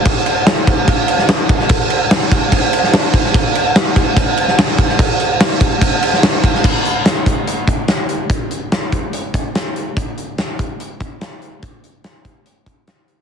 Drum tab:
CC |x-x-x-x-x-x-x-x-|x-x-x-x-x-x-x-x-|x-x-x-x-x-x-x-x-|x-x-x-x-x-x-x-x-|
HH |----------------|----------------|----------------|----------------|
SD |----o------oo--o|----o------oo--o|----o------oo--o|----o------oo--o|
BD |o-----o-o-----o-|o-----o-o-----o-|o-----o-o-----o-|o-----o-o-----o-|

CC |x---------------|----------------|----------------|----------------|
HH |--x-x-x-x-x-x-x-|x-x-x-x-x-x-x-x-|x-x-x-x-x-x-x-x-|x-x-x-x-x-x-x-x-|
SD |----o-------o---|----o-------o---|----o-------o---|----o-------o---|
BD |o-----o---o-----|o-----o---o-----|o-----o---o-----|o-----o---o-----|